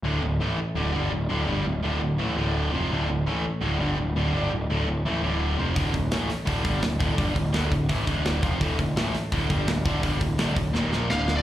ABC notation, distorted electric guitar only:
X:1
M:4/4
L:1/8
Q:1/4=168
K:Dm
V:1 name="Distorted electric guitar" clef=bass
[D,,A,,D,] [D,,A,,] [A,,E,A,] z [D,,A,,D,] [G,,D,G,] [D,,A,,] [D,,A,,D,] | [G,,D,G,] [D,,A,,] [D,,A,,D,] [D,,A,,] [A,,E,A,] [D,,A,,D,]2 [F,,C,F,] | [D,,A,,D,] [D,,A,,] [A,,E,A,] z [D,,A,,D,] [G,,D,G,] [D,,A,,] [D,,A,,D,] | [G,,D,G,] [D,,A,,] [D,,A,,D,] [D,,A,,] [A,,E,A,] [D,,A,,D,]2 [F,,C,F,] |
[D,,A,,D,] [D,,A,,] [A,,E,A,] z [D,,A,,D,] [G,,D,G,] [D,,A,,] [D,,A,,D,] | [G,,D,G,] [D,,A,,] [D,,A,,D,] [D,,A,,] [A,,E,A,] [D,,A,,D,]2 [F,,C,F,] | [D,,A,,D,] [D,,A,,] [A,,E,A,] z [D,,A,,D,] [G,,D,G,] [D,,A,,] [D,,A,,D,] | [G,,D,G,] [D,,A,,] [D,,A,,D,] [D,,A,,] [_E,,B,,_E,] [B,,F,B,] [D,,A,,D,]2 |]